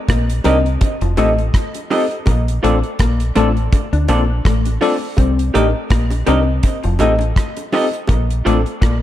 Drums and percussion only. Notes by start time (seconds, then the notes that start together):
0.08 kick, cross-stick, closed hi-hat
0.30 closed hi-hat
0.44 closed hi-hat, high bongo, low bongo
0.66 closed hi-hat
0.81 kick, closed hi-hat, high bongo
1.01 closed hi-hat
1.17 closed hi-hat, high bongo
1.38 closed hi-hat
1.54 kick, cross-stick, closed hi-hat
1.74 closed hi-hat, high bongo
1.91 open hi-hat, low bongo
2.11 closed hi-hat
2.26 kick, closed hi-hat, high bongo
2.48 closed hi-hat
2.64 closed hi-hat
2.83 closed hi-hat
2.99 kick, cross-stick, closed hi-hat
3.20 closed hi-hat
3.35 closed hi-hat, high bongo, low bongo
3.57 closed hi-hat
3.72 kick, closed hi-hat, high bongo
3.93 closed hi-hat
4.08 closed hi-hat, high bongo
4.45 kick, cross-stick, closed hi-hat
4.65 closed hi-hat, high bongo
4.81 open hi-hat, low bongo
5.17 kick, closed hi-hat, high bongo
5.39 closed hi-hat
5.55 closed hi-hat
5.90 kick, cross-stick, closed hi-hat
6.10 closed hi-hat, high bongo
6.27 closed hi-hat, high bongo, low bongo
6.63 kick, closed hi-hat, high bongo
6.83 closed hi-hat
6.99 closed hi-hat, high bongo
7.19 closed hi-hat, high bongo
7.36 kick, cross-stick, closed hi-hat
7.57 closed hi-hat, high bongo
7.72 open hi-hat, low bongo
7.93 closed hi-hat
8.08 kick, closed hi-hat, high bongo
8.30 closed hi-hat
8.47 closed hi-hat
8.66 closed hi-hat
8.82 kick, cross-stick, closed hi-hat